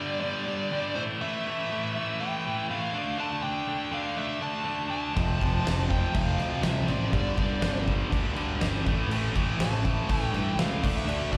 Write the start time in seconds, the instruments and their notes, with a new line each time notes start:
Already playing: distorted electric guitar G2 D3 G3, lead electric guitar D5
0.20 distorted electric guitar G2 D3 G3, lead electric guitar D5
0.47 distorted electric guitar G2 D3 G3
0.72 distorted electric guitar G2 D3 G3
0.95 distorted electric guitar A2 E3 A3, lead electric guitar C5
1.20 distorted electric guitar A2 E3 A3, lead electric guitar E5
1.46 distorted electric guitar A2 E3 A3
1.71 distorted electric guitar A2 E3 A3
1.96 distorted electric guitar A2 E3 A3
2.20 distorted electric guitar A2 E3 A3, lead electric guitar G5
2.45 distorted electric guitar A2 E3 A3
2.69 distorted electric guitar A2 E3 A3, lead electric guitar F5
2.93 distorted electric guitar D3 A3 D4
3.18 distorted electric guitar D3 A3 D4, lead electric guitar A5
3.42 distorted electric guitar D3 A3 D4, lead electric guitar G5
3.67 distorted electric guitar D3 A3 D4
3.91 distorted electric guitar D3 A3 D4, lead electric guitar F5
4.17 distorted electric guitar D3 A3 D4, lead electric guitar E5
4.41 distorted electric guitar D3 A3 D4, lead electric guitar A5
4.64 distorted electric guitar D3 A3 D4
4.89 distorted electric guitar D3 A3 D4, lead electric guitar A5
5.14 fingered electric bass F1, distorted electric guitar F2 C3 F3, kick, crash
5.40 fingered electric bass F1, distorted electric guitar F2 C3 F3, kick, crash
5.64 fingered electric bass F1, distorted electric guitar F2 C3 F3, snare, crash
5.88 distorted electric guitar F2 C3 F3, lead electric guitar G5, kick, crash
6.13 fingered electric bass F1, distorted electric guitar F2 C3 F3, lead electric guitar F5, kick, crash
6.38 fingered electric bass D2, distorted electric guitar F2 C3 F3, crash
6.62 fingered electric bass C2, distorted electric guitar F2 C3 F3, lead electric guitar E5, snare, crash
6.88 fingered electric bass A1, distorted electric guitar F2 C3 F3, lead electric guitar D5, crash
7.12 fingered electric bass G1, distorted electric guitar G2 D3 G3, kick, crash
7.37 distorted electric guitar G2 D3 G3, kick, crash
7.61 fingered electric bass G1, distorted electric guitar G2 D3 G3, snare, crash
7.86 distorted electric guitar G2 D3 G3, kick, crash
8.11 fingered electric bass D2, distorted electric guitar G2 D3 G3, kick, crash
8.35 distorted electric guitar G2 D3 G3, crash
8.60 fingered electric bass G1, distorted electric guitar G2 D3 G3, snare, crash
8.86 fingered electric bass A1, distorted electric guitar A2 E3 A3, kick, crash
9.08 fingered electric bass A1, distorted electric guitar A2, crash
9.12 distorted electric guitar E3 A3
9.35 fingered electric bass A1, distorted electric guitar A2 E3 A3, kick, crash
9.57 fingered electric bass A1, distorted electric guitar A2 E3 A3, snare, crash
9.62 lead electric guitar A5
9.84 distorted electric guitar A2 E3 A3, kick, crash
10.09 fingered electric bass A1, distorted electric guitar A2 E3 A3, lead electric guitar G5, kick, crash
10.32 fingered electric bass G2, distorted electric guitar A2 E3 A3, crash
10.56 fingered electric bass C#2, distorted electric guitar A2 E3 A3, lead electric guitar F5, snare, crash
10.83 fingered electric bass D2, distorted electric guitar D3 A3 D4, kick, crash
10.97 lead electric guitar E5
11.05 fingered electric bass D2, distorted electric guitar D3 A3 D4, crash
11.32 distorted electric guitar D3 A3 D4, lead electric guitar D5, kick, crash